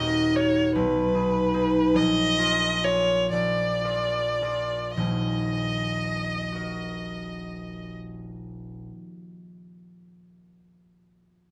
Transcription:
0.00 0.77 D#1 medium
0.00 0.77 D#2 medium
0.00 0.34 D#4 medium
0.00 0.34 F#4 medium
0.00 0.34 A#4 medium
0.00 0.37 D#5 loud
0.35 1.13 D#4 medium
0.35 0.78 F#4 medium
0.35 0.78 A#4 medium
0.35 0.75 C#5 medium
0.75 2.00 B1 medium
0.75 1.97 B4 loud
1.14 1.53 D#4 medium
1.14 1.53 G#4 medium
1.54 3.38 D#4 medium
1.54 2.38 G#4 medium
1.94 3.31 A#1 medium
1.94 2.85 D#5 loud
2.39 2.82 F4 medium
2.39 2.83 G#4 medium
2.39 2.84 A#4 medium
2.84 3.83 F4 medium
2.84 3.83 G#4 medium
2.84 3.83 A#4 medium
2.84 3.31 C#5 loud
3.31 4.96 A#1 medium
3.31 4.94 D5 medium
3.84 4.40 F4 medium
3.84 4.41 G#4 medium
3.84 4.41 A#4 medium
4.41 5.02 F4 medium
4.41 5.02 G#4 medium
4.41 6.54 A#4 medium
4.96 8.87 D#1 medium
4.96 8.87 A#1 medium
4.96 7.95 D#5 medium
6.52 9.52 F#4 medium
6.52 9.54 A#4 soft
6.57 9.56 D#5 soft

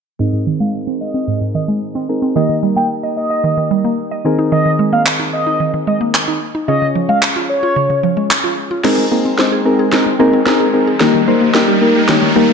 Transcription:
0.19 0.32 G#2 medium
0.19 2.05 C4 medium
0.19 2.05 D#4 medium
0.19 2.05 G#4 medium
0.19 2.05 A#4 medium
0.19 0.38 D#5 medium
0.33 0.45 G#2 medium
0.47 0.59 D#3 medium
0.60 0.72 G#3 medium
0.60 0.70 F5 medium
0.87 1.00 C4 medium
1.01 1.39 D#5 medium
1.14 1.27 C4 medium
1.28 1.40 G#2 medium
1.41 1.54 G#2 medium
1.55 1.67 D#3 medium
1.55 1.64 D#5 medium
1.68 1.81 G#3 medium
1.95 2.08 C4 medium
2.09 2.36 C4 medium
2.09 2.35 D#4 medium
2.09 2.36 G#4 soft
2.09 2.35 A#4 medium
2.22 2.35 C4 medium
2.35 2.48 D#3 medium
2.35 4.21 A#3 medium
2.35 4.21 D#4 medium
2.35 4.21 G4 medium
2.35 4.22 A#4 medium
2.35 2.55 D#5 loud
2.49 2.62 D#3 medium
2.63 2.75 G3 medium
2.76 2.89 A#3 medium
2.76 2.86 G5 medium
3.03 3.16 D#5 medium
3.17 3.68 D#5 medium
3.30 3.43 D#5 medium
3.44 3.56 D#3 medium
3.57 3.70 D#3 medium
3.71 3.83 G3 medium
3.85 3.97 A#3 medium
4.11 4.24 D#5 medium
4.25 6.37 D#3 medium
4.25 6.37 C4 medium
4.25 6.37 D#4 medium
4.25 6.37 G#4 medium
4.25 6.38 A#4 medium
4.39 4.51 D#4 medium
4.52 4.64 D#3 medium
4.52 4.71 D#5 medium
4.66 4.78 D#3 medium
4.79 4.91 G#3 medium
4.93 5.05 A#3 medium
4.93 5.02 F5 medium
5.06 clap loud
5.20 5.32 D#4 medium
5.33 5.71 D#5 medium
5.47 5.59 D#4 medium
5.60 5.72 D#3 medium
5.74 5.86 D#3 medium
5.87 6.00 G#3 medium
5.87 5.97 D#5 medium
6.01 6.13 A#3 medium
6.14 clap loud
6.28 6.40 D#4 medium
6.55 6.67 D#4 medium
6.68 6.81 C#3 medium
6.68 8.80 C#4 medium
6.68 8.80 F4 medium
6.68 8.81 G#4 medium
6.68 8.81 C#5 medium
6.68 6.87 D#5 loud
6.82 6.94 C#3 medium
6.95 7.08 F3 medium
7.09 7.21 G#3 medium
7.09 7.18 F5 medium
7.22 clap loud
7.36 7.48 F4 medium
7.49 8.00 C#5 medium
7.63 7.75 F4 medium
7.76 7.89 C#3 medium
7.90 8.02 C#3 medium
8.03 8.16 F3 medium
8.17 8.29 G#3 medium
8.31 clap loud
8.44 8.56 F4 medium
8.71 8.83 F4 medium
8.84 10.99 G#3 medium
8.84 8.97 G#3 medium
8.84 9.05 C4 loud
8.84 10.98 C4 medium
8.84 9.05 D#4 loud
8.84 9.05 G#4 loud
8.84 9.05 A#4 loud
8.84 snare soft
8.84 crash medium
8.84 riser medium
8.98 9.10 G#3 medium
9.11 9.24 A#3 medium
9.11 9.32 C4 medium
9.11 9.32 D#4 medium
9.11 9.33 G#4 medium
9.11 9.33 A#4 medium
9.25 9.37 C4 medium
9.38 9.59 C4 medium
9.38 9.60 D#4 medium
9.38 9.60 G#4 medium
9.38 9.60 C5 medium
9.38 snare medium
9.52 9.64 G#4 medium
9.65 9.86 C4 medium
9.65 9.86 D#4 medium
9.65 9.87 G#4 medium
9.65 9.87 A#4 loud
9.79 9.91 G#4 medium
9.92 10.05 G#3 medium
9.92 10.13 C4 medium
9.92 10.13 D#4 medium
9.92 10.14 G#4 medium
9.92 10.14 A#4 medium
9.92 snare medium
10.06 10.19 G#3 medium
10.19 10.32 A#3 medium
10.19 10.40 C4 loud
10.19 10.40 D#4 loud
10.19 10.41 G#4 loud
10.19 10.41 A#4 loud
10.33 10.46 C4 medium
10.46 10.67 C4 loud
10.46 10.68 D#4 loud
10.46 10.68 G#4 medium
10.46 10.68 A#4 loud
10.46 snare medium
10.60 10.73 G#4 medium
10.73 10.94 C4 medium
10.73 10.95 D#4 medium
10.73 10.95 G#4 medium
10.73 10.95 A#4 medium
10.87 11.00 G#4 medium
11.00 11.13 D#3 medium
11.00 12.53 G3 medium
11.00 11.21 A#3 loud
11.00 12.53 D#4 medium
11.00 11.22 D#4 loud
11.00 11.22 G4 loud
11.00 11.22 A#4 loud
11.00 snare medium
11.14 11.27 D#3 medium
11.27 11.40 G3 medium
11.27 11.48 A#3 medium
11.27 11.49 D#4 medium
11.27 11.49 G4 medium
11.27 11.49 C5 loud
11.41 11.54 A#3 medium
11.54 11.76 A#3 medium
11.54 11.76 D#4 medium
11.54 11.76 G4 medium
11.54 11.76 A#4 loud
11.54 snare medium
11.68 11.81 G4 medium
11.81 12.02 A#3 medium
11.81 12.03 D#4 medium
11.81 12.03 G4 medium
11.81 12.03 A#4 loud
11.95 12.08 G4 medium
12.09 12.21 D#3 medium
12.09 12.30 A#3 medium
12.09 12.30 D#4 medium
12.09 12.30 G4 medium
12.09 12.30 C#5 medium
12.09 snare medium
12.22 12.35 D#3 medium
12.36 12.48 G3 medium
12.36 12.53 A#3 loud
12.36 12.53 D#4 loud
12.36 12.53 G4 loud
12.36 12.53 A#4 loud
12.49 12.53 A#3 medium

